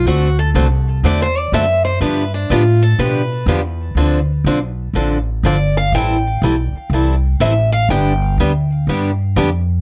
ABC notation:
X:1
M:4/4
L:1/8
Q:"Swing" 1/4=122
K:Ddor
V:1 name="Steel-string acoustic guitar"
^F A z2 (3d c d e c | B D F A B2 z2 | z6 d f | g2 z4 e f |
g2 z6 |]
V:2 name="Steel-string acoustic guitar"
[D,A,C^FA] z [D,A,CFA] z [D,A,CFA] z [D,A,CFA] z | [D,F,B,DG] z [D,F,B,DG] z [D,F,B,DG] z [D,F,B,DG] z | [D,F,CDA] z [D,F,CDA] z [D,F,CDA] z [D,F,CDA] z | [E,G,CEA] z [E,G,CEA] z [E,G,CEA] z [E,G,CEA] z |
[D,G,B,DG] z [D,G,B,DG] z [D,G,B,DG] z [D,G,B,DG] z |]
V:3 name="Upright bass" clef=bass
D,,2 C,,2 E,,2 ^F,,2 | G,,2 A,,2 B,,2 E,,2 | D,,2 B,,,2 A,,,2 G,,,2 | A,,,2 B,,, z C,,2 A,,,2 |
G,,,2 D,,2 G,,2 F,,2 |]